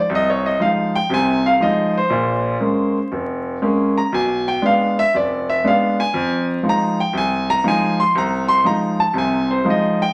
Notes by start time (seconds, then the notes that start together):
Already playing: D5
0.09 C2
0.15 D#5
0.30 C#5
0.46 D#5
0.60 F3 G#3 D#4 F5
0.95 G5
1.09 C2 C3
1.14 G#5
1.46 F5
1.60 F3 G#3 D#4 D#5
1.98 C5
2.10 A#1 A#2
2.60 G#3 A#3 C#4
3.12 F1
3.62 G#3 A#3 C#4
3.98 A#5
4.12 B1 G#5
4.48 G5
4.62 G#3 B3 D4 F5
4.99 E5
5.14 F1 D5
5.50 E5
5.64 G#3 B3 D4 F5
6.00 G#5
6.14 F2
6.63 F3 G#3 D#4
6.69 A#5
7.00 G5
7.13 C2
7.18 G#5
7.50 A#5
7.64 F3 G#3 D#4 G#5
8.00 C6
8.15 C2 A#5
8.48 C6
8.64 F3 G#3 D#4 A#5
9.00 A5
9.13 C2 C3
9.18 G#5
9.51 C5
9.65 F3 G#3 D#4
9.70 D#5
10.02 G5